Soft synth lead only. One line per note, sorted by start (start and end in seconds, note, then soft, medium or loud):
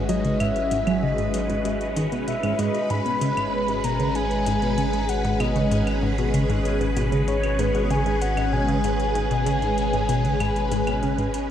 0.09 0.42 D#5 loud
0.40 1.04 E5 loud
1.03 1.96 D#5 loud
2.28 2.61 E5 loud
2.59 2.92 D#5 loud
2.90 3.86 B5 loud
3.84 4.17 A#5 loud
4.15 5.11 G#5 loud
5.09 5.42 F#5 loud
5.40 6.03 D#5 medium
7.28 7.61 C#5 loud
7.59 7.92 B4 loud
7.90 8.23 G#5 loud
8.22 8.54 F#5 loud
8.53 11.51 G#5 loud